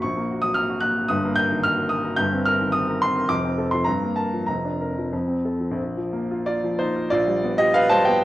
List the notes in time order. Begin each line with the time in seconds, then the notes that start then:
0.02 A#1 C#6
0.17 A#3
0.31 F#4
0.42 F#3 D#6
0.54 A#3 F6
0.70 F#4
0.80 A#3 F#6
0.97 F#4
1.08 G1 G2 D#6
1.25 A#3
1.36 A#4 G6
1.52 D#3
1.64 A#3 F6
1.78 A#4
1.89 A#3 D#6
2.04 A#4
2.16 G1 G2 G6
2.33 C4
2.46 A#4 F6
2.61 D#3
2.72 C4 D#6
2.90 A#4
3.02 C4 C6
3.18 A#4
3.28 F1 F2 D6
3.45 C4
3.58 A4
3.71 F3 C6
3.84 G2 A#5
4.03 A#3
4.16 A#4 A5
4.33 F3
4.46 F1 F2 A#5
4.65 D4
4.81 A#4
4.98 F3
5.13 F2
5.28 C4
5.45 A4
5.60 F3
5.71 A#1
5.97 F3
6.13 A#3
6.31 F4
6.46 F4 D5
6.64 F3
6.79 A#3 D#4 C5
6.96 F4
7.10 A#1 F4 D5
7.27 G3
7.43 B3
7.58 F4 G4 D#5
7.74 B4 F5
7.89 G3 C5 A5
8.05 B3 B4 G5